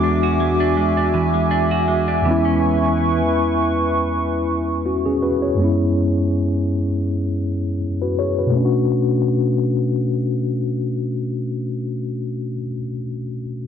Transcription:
Already playing: E2 E3 G#3 B3 D4 F#4 E5 G#5 D6
0.03 D4
0.23 F#4
0.40 G#3
0.60 D4
0.77 G#3
0.97 D4
1.14 E3
1.34 G#3
1.51 D4
1.71 F#4
1.88 G#3
2.08 D4
2.21 E2 E3 G#3 E4 B4 C#6
2.26 B3 C#4
2.31 E4
2.45 C#4
4.86 C#4 F#4
5.05 C#4 G#4
5.22 F#4 B4
5.42 G#4 C#5
5.55 F#2 G#3
5.59 B3 C#4
5.64 E4
8.02 F#4 B4
8.19 G#4 C#5
8.39 F#4 B4
8.46 B2
8.51 A3
8.56 C#4
8.60 D4
8.65 F#4

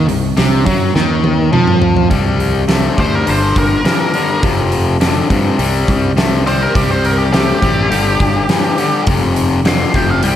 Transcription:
0.08 C2 C3, open hi-hat
0.37 C2 C3, snare, open hi-hat
0.66 F#2 F#3, kick, open hi-hat
0.95 D#2 D#3, snare
1.24 high tom
1.52 F2 F3, mid tom
1.67 mid tom
1.82 floor tom
1.97 floor tom
2.10 C2 C3 G3, kick, open hi-hat
2.40 open hi-hat
2.68 C3 A3, snare, open hi-hat
2.97 D2 C3 G3 C5, kick, open hi-hat
3.15 A#4
3.26 G1 G2 D3, open hi-hat
3.30 C5
3.56 G1 A#4, kick, open hi-hat
3.84 G2 E3, snare, open hi-hat
4.14 G2 D3, open hi-hat
4.43 F1 F2 C3, kick, open hi-hat
4.72 open hi-hat
5.00 F2 D3, snare, open hi-hat
5.29 F2 G2 C3, kick, open hi-hat
5.58 C2 C3 G3, open hi-hat
5.88 C2, kick, open hi-hat
6.17 C3 A3, snare, open hi-hat
6.46 C3 G3 C5, open hi-hat
6.62 A#4
6.75 C2 C3 G3 G4, kick, open hi-hat
6.91 C5
7.05 A#4, open hi-hat
7.18 G4
7.32 C3 A3 G4, snare, open hi-hat
7.62 A1 C3 G3, kick, open hi-hat
7.90 G1 G2 D3, open hi-hat
8.20 G1, kick, open hi-hat
8.49 G2 E3, snare, open hi-hat
8.77 G2 D3, open hi-hat
9.07 F1 F2 C3, kick, open hi-hat
9.36 open hi-hat
9.65 F2 D3 C6, snare, open hi-hat
9.94 F1 F2 C3 G5, kick, open hi-hat
10.10 F5
10.23 C2 C3 G3 G5, open hi-hat

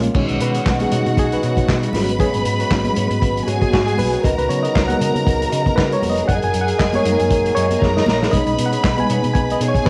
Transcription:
Already playing: G#3 A#3 C#4 F4 G#4 C#5 F5
0.03 muted clean electric guitar stroke, closed hi-hat
0.14 B1 D#3 G#3 B3 C#4 D#4 F#4 G#4 C#5 F#5, kick, crash, muted conga, low conga
0.29 B1, muted clean electric guitar stroke, closed hi-hat
0.40 B2 B4, muted clean electric guitar stroke, closed hi-hat
0.54 D#4 G#4 C#5, closed hi-hat
0.66 B1, kick, snare, clap
0.80 G#4, muted clean electric guitar stroke, closed hi-hat, muted conga, high conga
0.91 B2 D#4 F#4 G#4 C#5, closed hi-hat, low conga
1.05 B2, muted clean electric guitar stroke, closed hi-hat, high conga
1.17 B1 G#4, muted clean electric guitar stroke, kick, closed hi-hat, muted conga
1.31 B4, closed hi-hat, muted conga
1.42 B2 D#4 G#4 C#5, closed hi-hat
1.57 D#4 G#4 C#5, kick, closed hi-hat, high conga
1.68 B2, kick, snare, clap, high conga
1.82 muted clean electric guitar stroke, closed hi-hat, muted conga
1.93 G#1 F#3 G#3 B3 C#4 F#4 B4 C#5 B5, snare, open hi-hat, high conga, low conga
2.08 muted clean electric guitar stroke, closed hi-hat
2.19 F#4 G#4 B4 C#5, kick, closed hi-hat, muted conga, low conga
2.33 G#1, muted clean electric guitar stroke, closed hi-hat, muted conga
2.45 G#2, muted clean electric guitar stroke, closed hi-hat
2.60 F#4 B4 C#5, closed hi-hat
2.70 G#1 F#3 A#3 B3 C#4, kick, snare, clap, muted conga
2.84 muted clean electric guitar stroke, closed hi-hat, muted conga, high conga
2.96 G#2 F#4 B4 C#5, closed hi-hat, low conga
3.10 G#2, muted clean electric guitar stroke, closed hi-hat, high conga
3.21 G#1, muted clean electric guitar stroke, kick, closed hi-hat, muted conga
3.35 muted clean electric guitar stroke, closed hi-hat, muted conga
3.46 G#2 F#4 G#4 B4 C#5 G#5, closed hi-hat
3.59 F#4 G#4 B4 C#5, kick, closed hi-hat, high conga
3.71 G#2 F#4 B4 C#5, kick, snare, clap, high conga
3.86 G#4, muted clean electric guitar stroke, closed hi-hat
3.98 B1 B4, muted clean electric guitar stroke, open hi-hat, high conga, low conga
4.11 F#4 B4 C#5, closed hi-hat
4.22 C#2 C#3 D#4 F#4 A#4 B4 D#5 A#5, kick, closed hi-hat, muted conga, low conga
4.37 C#2 B4, muted clean electric guitar stroke, closed hi-hat, muted conga
4.48 C#3 F#3 B3 D#4 C#5, muted clean electric guitar stroke, closed hi-hat
4.62 F#4 B4 D#5, closed hi-hat
4.75 C#2, kick, snare, clap, muted conga
4.88 F#5, muted clean electric guitar stroke, closed hi-hat, high conga
5.00 C#3 F#4 B4 D#5, closed hi-hat, low conga
5.14 C#3, muted clean electric guitar stroke, closed hi-hat, high conga
5.25 C#2, muted clean electric guitar stroke, kick, closed hi-hat, muted conga
5.39 muted clean electric guitar stroke, closed hi-hat, muted conga
5.49 C#3 F#4 B4 D#5, closed hi-hat
5.65 F#4 B4, kick, closed hi-hat, high conga
5.76 C#3 F#4 B4 D#5, kick, snare, clap, high conga
5.90 C#5, muted clean electric guitar stroke, closed hi-hat, muted conga
6.01 F1, muted clean electric guitar stroke, open hi-hat, high conga, low conga
6.10 D#5
6.15 F#4 B4 D#5, closed hi-hat
6.26 F#1 F#3 D#4 G#4 A#4 D#5 F#5 G#5, kick, closed hi-hat, muted conga, low conga
6.41 F#1 G#5, muted clean electric guitar stroke, closed hi-hat, muted conga
6.52 F#2, muted clean electric guitar stroke, closed hi-hat
6.61 F#5
6.67 G#4 A#4 D#5, closed hi-hat
6.78 F#1 D#5, kick, snare, clap, muted conga
6.93 C#5, muted clean electric guitar stroke, closed hi-hat, muted conga, high conga
7.04 F#2 G#3 A#3 D#4 G#4 A#4 D#5, closed hi-hat, low conga
7.12 A#4
7.19 F#2, muted clean electric guitar stroke, closed hi-hat, high conga
7.30 F#1, muted clean electric guitar stroke, kick, closed hi-hat, muted conga
7.46 closed hi-hat
7.55 F#2 G#4 A#4 C#5 D#5, closed hi-hat
7.69 G#4 A#4 D#5, closed hi-hat, high conga
7.81 F#2 G#4 A#4 D#5 A#5, kick, snare, muted conga, high conga
7.96 D#5, muted clean electric guitar stroke, snare
8.06 A#1, muted clean electric guitar stroke, snare, high conga, low conga
8.20 G#4 A#4 D#5, snare
8.31 B1 G#3 B3 C#4 D#4 G#4 B4 C#5 D#5 B5, kick, closed hi-hat, muted conga, low conga
8.46 B1, muted clean electric guitar stroke, closed hi-hat
8.57 B2, muted clean electric guitar stroke, closed hi-hat
8.66 F#5
8.71 D#4 G#4 C#5, closed hi-hat
8.84 B1, kick, snare, clap
8.98 G#5, muted clean electric guitar stroke, closed hi-hat, high conga
9.09 B2 D#4 G#4 C#5, closed hi-hat, low conga
9.23 B2, muted clean electric guitar stroke, closed hi-hat, high conga
9.34 B1 G#5, muted clean electric guitar stroke, kick, closed hi-hat, muted conga
9.49 D#5, muted clean electric guitar stroke, closed hi-hat, muted conga
9.60 B2 D#4 G#4 C#5 G#5, closed hi-hat
9.68 C#5
9.75 D#4 G#4 C#5, kick, closed hi-hat, high conga
9.85 B2 D#4 B4, muted conga, high conga

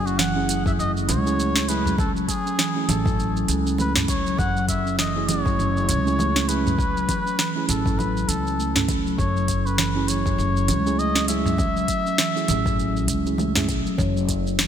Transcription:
Already playing: F#1 A3 C#4 E4 F#4
0.06 C#4 F#4, shaker
0.19 E3 F#5, snare, low conga, shaker
0.35 A3 C#4 E4 G#4
0.49 F#3, closed hi-hat, shaker
0.65 F#3 A3 C#4 E4 G#4 E5, kick, udu, shaker
0.79 F#1 F#3 D#5, shaker
0.96 F#3, shaker
1.09 C#2 C#4 C#5, closed hi-hat, low conga, shaker
1.25 A3 C#4 E4 G#4, shaker
1.39 A3, shaker
1.56 C#4, snare
1.68 F#3 A3 C#4 E4 G#4 B4, closed hi-hat, shaker
1.86 F#3, udu, shaker
1.98 F#3 A4, kick, low conga, shaker
2.16 F#3, shaker
2.28 F#3 G#4, kick, closed hi-hat, shaker
2.46 C#4, shaker
2.58 E3, snare, shaker
2.75 A3 C#4 E4 G#4
2.89 A1 F#3 A4, closed hi-hat, low conga, shaker
3.04 F#3 A3 C#4 E4 A4, kick, udu, shaker
3.18 F#3, shaker
3.36 F#3, shaker
3.48 C#2 C#4, closed hi-hat, shaker
3.66 C#4, shaker
3.78 A3 B4, low conga, shaker
3.96 snare, udu
4.08 F#3 C#5, kick, closed hi-hat, shaker
4.26 F#3, shaker
4.38 F#1 F#5, kick, low conga, shaker
4.56 F#3, shaker
4.69 E5, kick, closed hi-hat, shaker
4.86 C#4, shaker
4.99 E3 D#5, snare, shaker
5.15 A3 C#4 E4 G#4
5.28 F#3 C#5, closed hi-hat, low conga, shaker
5.45 F#3 A3 C#4 E4 G#4, kick, udu, shaker
5.59 F#1 F#3, shaker
5.76 F#3, shaker
5.89 C#2 C#4, closed hi-hat, shaker
6.05 A3 C#4 E4 G#4, shaker
6.19 A3, low conga, shaker
6.36 C#4, snare
6.47 F#3 A3 C#4 E4 G#4 B4, closed hi-hat, shaker
6.66 F#3, udu, shaker
6.79 kick, shaker
6.96 F#3, shaker
7.09 kick, closed hi-hat, low conga, shaker
7.26 C#4, shaker
7.38 E3, snare, shaker
7.55 A3 C#4 E4 G#4
7.69 A1 F#3 A4, closed hi-hat, shaker
7.84 F#3 A3 C#4 E4, kick, udu, shaker
7.88 A4
7.98 F#3 B4, low conga, shaker
8.16 F#3, shaker
8.28 C#2 C#4 A4, closed hi-hat, shaker
8.46 C#4, shaker
8.59 A3, shaker
8.76 C#4, snare, udu
8.88 F#3, kick, closed hi-hat, low conga, shaker
9.06 F#3, shaker
9.18 F#1 F#3 C#5, kick, shaker
9.36 F#3, shaker
9.48 F#3, kick, closed hi-hat, shaker
9.65 C#4 B4, shaker
9.78 E3, snare, low conga, shaker
9.95 A3 C#4 E4 G#4
10.08 F#3 C#5, closed hi-hat, shaker
10.25 F#3 A3 C#4 E4 G#4, kick, udu, shaker
10.38 F#1 F#3, shaker
10.56 F#3, shaker
10.68 C#2 C#4, closed hi-hat, low conga, shaker
10.85 A3 C#4 E4 G#4, shaker
10.99 A3 D#5, shaker
11.15 C#4, snare
11.28 F#3 A3 C#4 E4 G#4 E5, closed hi-hat, shaker
11.46 F#3, udu, shaker
11.58 F#3, kick, low conga, shaker
11.76 F#3, shaker
11.88 F#3, kick, closed hi-hat, shaker
12.06 C#4, shaker
12.18 E3, snare, shaker
12.35 A3 C#4 E4 G#4, shaker
12.48 A1 F#3, closed hi-hat, low conga, shaker
12.65 F#3 A3 C#4 E4 G#4, kick, udu, shaker
12.79 F#3, shaker
12.96 F#3, shaker
13.08 C#2 C#4, kick, closed hi-hat, shaker
13.25 A3 C#4 E4 G#4, shaker
13.38 A3, low conga, shaker
13.55 A3 C#4 E4 G#4, snare, udu
13.69 B1 F#3, kick, closed hi-hat, shaker
13.86 F#3, shaker
13.98 F#1 F#3 C#5, kick, low conga, shaker
14.16 F#3, shaker
14.28 F#3, kick, closed hi-hat, shaker
14.46 C#4, shaker
14.59 E3, snare, shaker

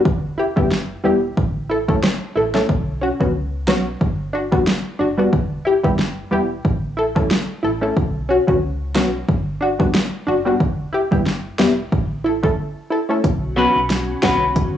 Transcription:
0.05 E1, kick
0.38 E4 G4
0.56 F#1 G3 B3 E4 G4, kick
0.71 snare
1.04 E1 G3 B3 E4 G4
1.37 A1, kick
1.69 E4 A4
1.88 A3 C#4 E4 A4, kick
2.03 cross-stick, snare
2.35 A1 E4 A4
2.54 A3 C#4 E4 A4, snare
2.69 B1, kick
3.01 C#4 F#4
3.20 C#2 F#3 B3 C#4 F#4, kick
3.67 B1 F#3 B3 C#4 F#4, snare
4.01 G1, kick
4.33 D4 F#4
4.52 G3 B3 D4 F#4, kick
4.67 snare
4.99 F#1 D4 F#4
5.18 G3 B3 D4 F#4
5.33 E1, kick
5.65 E4 G4
5.83 F#1 G3 B3 E4 G4, kick
5.99 snare
6.31 E1 G3 B3 E4 G4
6.65 A1, kick
6.97 E4 A4
7.15 A3 C#4 E4 A4, kick
7.31 snare
7.63 A1 E4 A4
7.81 A3 C#4 E4 A4
7.97 B1, kick
8.29 C#4 F#4
8.47 C#2 F#3 B3 C#4 F#4, kick
8.95 B1 F#3 B3 C#4 F#4, snare
9.29 G1, kick
9.61 D4 F#4
9.79 G3 B3 D4 F#4, kick
9.95 snare
10.27 F#1 D4 F#4
10.45 G3 B3 D4 F#4
10.60 E1, kick
10.93 E4 G4
11.11 F#1 G3 B3 E4 G4, kick
11.26 snare
11.58 E1 G3 B3 E4 G4, snare
11.92 A1, kick
12.24 E4 A4
12.43 A3 C#4 E4 A4, kick
12.90 E4 A4
13.09 A3 C#4 E4 A4
13.24 B1 B3 C#4 F#4, kick, closed hi-hat
13.56 F#3 B3 C#4 F#4 B4
13.76 B1
13.90 snare, closed hi-hat
14.22 B1 F#3 B3 C#4 F#4 B4, kick, snare
14.56 G1 G3 D4 B4, kick, closed hi-hat

